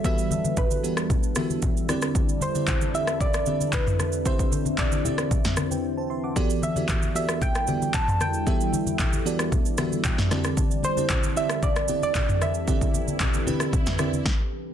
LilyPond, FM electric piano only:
\new Staff \with { instrumentName = "FM electric piano" } { \time 4/4 \key d \mixolydian \tempo 4 = 114 << { r1 | r1 | r2 r8. <b' g''>8 <c'' a''>16 <e'' c'''>16 <fis'' d'''>16~ | <fis'' d'''>16 r2. r8. |
r2 r8 d''8 g''8 a''8 | r1 | r1 | } \\ { <e b fis' g' a' b'>4~ <e b fis' g' a' b'>16 r16 <e b fis' g' a' b'>8. r16 <e b fis' g' a' e''>8. r16 <d c' e' g' d''>8~ | <d c' e' g' d''>8 r16 <d c' e' g' d''>8 r16 <d c' e' g' d''>8. r16 <d c' e' g' e''>4~ <d c' e' g' e''>16 r16 | <d c' e' g' e''>4~ <d c' e' g' e''>16 r16 <d c' e' g' e''>8. r4. r16 | <e b fis' g' a' d''>8 r16 <e b fis' g' a' d''>8 r16 <e b fis' g' a' d''>8. r16 <e b fis' g' a' d''>4~ <e b fis' g' a' d''>16 r16 |
<e b e' g' a' e''>4~ <e b e' g' a' e''>16 r16 <e b fis' g' a' d''>8. r16 <e b fis' g' a' e''>8. r16 <d c' e' fis' g' d''>8~ | <d c' e' fis' g' d''>8 r16 <d c' e' g' d''>8 r16 <d c' e' g' d''>8. r16 <d c' e' g' a'>4~ <d c' e' g' a'>16 r16 | <d c' e' g' d''>4~ <d c' e' g' d''>16 r16 <d c' e' g' b'>8. r16 <d c' e' g' d''>8 r4 | } >> }